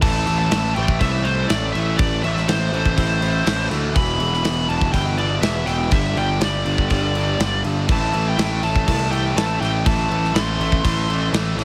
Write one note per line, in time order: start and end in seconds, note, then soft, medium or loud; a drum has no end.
0.01 0.24 A1 medium
0.01 0.26 A2 medium
0.01 0.26 E3 loud
0.01 0.27 A3 loud
0.01 0.38 A5 loud
0.01 kick loud
0.01 crash loud
0.01 crash medium
0.26 0.49 A1 medium
0.26 0.50 A2 medium
0.26 0.51 E3 loud
0.26 0.52 A3 medium
0.26 crash medium
0.39 0.74 A5 loud
0.51 0.73 A1 medium
0.51 0.77 A2 medium
0.51 0.78 E3 medium
0.51 0.78 A3 medium
0.51 snare loud
0.51 crash medium
0.75 0.98 A1 medium
0.75 1.00 A2 medium
0.75 1.01 E3 medium
0.75 1.01 A3 medium
0.75 1.01 G5 loud
0.75 crash medium
0.88 kick loud
1.00 1.45 C2 medium
1.00 1.25 A2 loud
1.00 1.26 E3 medium
1.00 1.25 A3 loud
1.00 1.25 E5 loud
1.00 kick medium
1.00 crash medium
1.24 1.49 A2 medium
1.24 1.51 E3 medium
1.24 1.50 A3 loud
1.24 1.47 C5 medium
1.24 crash medium
1.48 1.72 A1 loud
1.48 1.74 A2 medium
1.48 1.76 E3 medium
1.48 1.76 A3 medium
1.48 1.72 D5 medium
1.48 snare loud
1.48 crash medium
1.73 1.96 A1 medium
1.73 1.98 A2 medium
1.73 1.99 E3 loud
1.73 1.99 A3 medium
1.73 1.97 E5 medium
1.73 crash medium
1.97 2.21 A1 loud
1.97 2.24 A2 loud
1.97 2.25 E3 loud
1.97 2.25 A3 loud
1.97 2.22 D5 loud
1.97 kick loud
1.97 crash medium
2.23 2.46 A1 medium
2.23 2.47 A2 medium
2.23 2.48 E3 medium
2.23 2.48 A3 medium
2.23 2.48 E5 loud
2.23 crash medium
2.37 snare soft
2.48 2.70 A1 loud
2.48 2.72 A2 medium
2.48 2.73 E3 medium
2.48 2.73 A3 medium
2.48 3.67 C5 medium
2.48 snare loud
2.48 crash medium
2.72 2.95 A1 medium
2.72 2.96 A2 medium
2.72 2.96 E3 medium
2.72 2.97 A3 medium
2.72 crash medium
2.85 kick loud
2.97 3.41 A1 medium
2.97 3.19 A2 medium
2.97 3.20 E3 medium
2.97 3.21 A3 loud
2.97 kick medium
2.97 crash medium
3.20 3.43 A2 medium
3.20 3.43 E3 medium
3.20 3.44 A3 medium
3.20 crash medium
3.44 3.68 A1 medium
3.44 3.69 A2 medium
3.44 3.70 E3 medium
3.44 3.70 A3 medium
3.44 snare loud
3.44 crash medium
3.70 3.92 D2 medium
3.70 3.94 A2 medium
3.70 3.94 E3 medium
3.70 3.94 A3 loud
3.70 snare soft
3.70 crash medium
3.95 4.18 E1 loud
3.95 4.17 E2 loud
3.95 4.18 B2 loud
3.95 4.19 E3 loud
3.95 4.33 B5 loud
3.95 kick loud
3.95 crash medium
4.18 4.42 E1 medium
4.18 4.42 E2 medium
4.18 4.44 B2 loud
4.18 4.44 E3 loud
4.18 crash medium
4.34 4.71 B5 loud
4.34 snare soft
4.44 4.66 E1 loud
4.44 4.67 E2 medium
4.44 4.68 B2 medium
4.44 4.68 E3 medium
4.44 snare loud
4.44 crash medium
4.68 4.91 E1 loud
4.68 4.91 E2 medium
4.68 4.92 B2 medium
4.68 4.93 E3 loud
4.68 4.92 A5 loud
4.68 crash medium
4.81 kick medium
4.92 5.38 G1 medium
4.92 5.18 E2 loud
4.92 5.18 B2 loud
4.92 5.19 E3 loud
4.92 5.18 G5 loud
4.92 kick medium
4.92 crash medium
5.18 5.42 E2 medium
5.18 5.42 B2 medium
5.18 5.43 E3 loud
5.18 5.41 D5 medium
5.18 crash medium
5.42 5.65 E1 loud
5.42 5.67 E2 medium
5.42 5.67 B2 medium
5.42 5.68 E3 loud
5.42 5.68 E5 medium
5.42 snare loud
5.42 crash medium
5.66 5.89 E1 medium
5.66 5.90 E2 medium
5.66 5.91 B2 loud
5.66 5.91 E3 loud
5.66 5.92 G5 loud
5.66 snare soft
5.66 crash medium
5.91 6.14 G1 loud
5.91 6.16 G2 medium
5.91 6.16 D3 loud
5.91 6.17 G3 loud
5.91 6.18 E5 loud
5.91 kick loud
5.91 crash medium
6.16 6.39 G1 medium
6.16 6.40 G2 medium
6.16 6.40 D3 loud
6.16 6.41 G3 loud
6.16 6.43 G5 medium
6.16 crash medium
6.41 6.63 G1 medium
6.41 6.66 G2 medium
6.41 6.66 D3 medium
6.41 6.67 G3 loud
6.41 7.61 D5 medium
6.41 snare loud
6.41 crash medium
6.66 6.88 G1 medium
6.66 6.90 G2 medium
6.66 6.91 D3 medium
6.66 6.91 G3 medium
6.66 crash medium
6.78 kick medium
6.90 7.35 G1 medium
6.90 7.15 G2 medium
6.90 7.15 D3 loud
6.90 7.16 G3 loud
6.90 kick medium
6.90 crash medium
7.15 7.38 G2 medium
7.15 7.39 D3 medium
7.15 7.39 G3 medium
7.15 crash medium
7.40 7.62 G1 medium
7.40 7.63 G2 medium
7.40 7.64 D3 medium
7.40 7.64 G3 medium
7.40 snare loud
7.40 crash medium
7.64 7.87 G1 medium
7.64 7.88 G2 medium
7.64 7.87 D3 medium
7.64 7.88 G3 loud
7.64 crash medium
7.87 8.11 A1 loud
7.87 8.13 A2 medium
7.87 8.12 E3 loud
7.87 8.13 A3 loud
7.87 kick loud
7.87 crash medium
7.92 8.25 A5 loud
8.12 8.36 A1 medium
8.12 8.37 A2 medium
8.12 8.37 E3 medium
8.12 8.38 A3 loud
8.12 crash medium
8.29 8.62 G5 medium
8.38 8.60 A1 medium
8.38 8.62 A2 medium
8.38 8.62 E3 medium
8.38 8.63 A3 medium
8.38 snare loud
8.38 crash medium
8.63 8.85 A1 medium
8.63 8.85 A2 medium
8.63 8.87 E3 medium
8.63 8.86 A3 loud
8.63 8.87 A5 medium
8.63 crash medium
8.76 kick loud
8.86 9.32 C2 medium
8.86 9.10 A2 medium
8.86 9.11 E3 loud
8.86 9.11 A3 loud
8.86 9.11 A5 medium
8.86 kick loud
8.86 crash medium
9.11 9.34 A2 medium
9.11 9.36 E3 medium
9.11 9.35 A3 loud
9.11 9.37 G5 medium
9.11 crash medium
9.36 9.58 A1 loud
9.36 9.59 A2 medium
9.36 9.60 E3 medium
9.36 9.60 A3 medium
9.36 9.60 A5 loud
9.36 snare loud
9.36 crash medium
9.60 9.83 A1 medium
9.60 9.85 A2 medium
9.60 9.86 E3 loud
9.60 9.86 A3 loud
9.60 9.83 G5 medium
9.60 snare soft
9.60 crash medium
9.86 10.08 A1 loud
9.86 10.10 A2 medium
9.86 10.11 E3 loud
9.86 10.11 A3 loud
9.86 10.08 A5 loud
9.86 kick loud
9.86 crash medium
10.10 10.32 A1 medium
10.10 10.34 A2 medium
10.10 10.36 E3 medium
10.10 10.35 A3 medium
10.10 10.35 A5 loud
10.10 crash medium
10.24 snare soft
10.33 10.56 A1 loud
10.33 10.59 A2 medium
10.33 10.61 E3 medium
10.33 10.60 A3 medium
10.33 11.29 C6 medium
10.33 snare loud
10.33 crash medium
10.59 10.81 A1 medium
10.59 10.83 A2 medium
10.59 10.85 E3 loud
10.59 10.84 A3 medium
10.59 crash medium
10.72 kick medium
10.85 11.28 A1 medium
10.85 11.08 A2 medium
10.85 11.10 E3 medium
10.85 11.09 A3 loud
10.85 kick loud
10.85 crash medium
11.10 11.32 A2 medium
11.10 11.33 E3 medium
11.10 11.33 A3 medium
11.10 crash medium
11.33 11.55 A1 loud
11.33 11.55 A2 medium
11.33 11.57 E3 medium
11.33 11.56 A3 loud
11.33 snare loud
11.33 crash medium
11.57 11.64 A1 medium
11.57 11.64 A2 medium
11.57 11.64 E3 medium
11.57 11.64 A3 loud
11.57 snare soft
11.57 crash medium